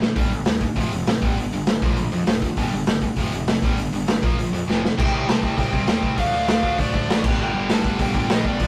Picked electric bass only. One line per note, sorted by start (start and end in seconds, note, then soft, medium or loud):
0.16 0.26 G1 medium
0.30 0.40 G1 medium
0.46 0.66 D#2 medium
0.76 0.86 F1 medium
0.92 1.02 F1 medium
1.08 1.17 A1 medium
1.22 1.32 G1 medium
1.37 1.46 G1 medium
1.52 1.62 G1 medium
1.67 1.76 G1 medium
1.82 1.91 A#1 medium
1.97 2.07 A#1 medium
2.12 2.22 F2 medium
2.27 2.47 F1 medium
2.57 2.67 G1 medium
2.73 2.82 G1 medium
2.87 3.07 G1 medium
3.16 3.26 F1 medium
3.32 3.42 F1 medium
3.47 3.57 F1 medium
3.62 3.72 G1 medium
3.78 3.87 G1 medium
3.93 4.03 G1 medium
4.07 4.17 G1 medium
4.23 4.32 A#1 medium
4.38 4.48 A#1 medium
4.53 4.62 F2 medium
4.68 4.87 F1 medium
4.98 5.11 C2 medium
5.11 5.25 C2 medium
5.28 5.41 C2 medium
5.43 5.56 C2 medium
5.57 5.71 C2 medium
5.73 5.87 C2 medium
5.88 6.01 D#2 medium
6.02 6.16 C2 medium
6.18 6.31 D2 medium
6.34 6.47 D2 medium
6.48 6.62 D2 medium
6.63 6.77 D2 medium
6.79 6.92 D2 medium
6.94 7.07 D2 medium
7.08 7.22 A1 loud
7.24 7.37 G1 medium
7.39 7.52 G1 loud
7.54 7.68 G1 medium
7.69 7.83 G1 medium
7.84 7.97 G1 medium
7.99 8.13 G1 medium
8.14 8.28 G1 medium
8.30 8.43 A#1 medium
8.45 8.58 G1 medium
8.60 8.67 A#1 loud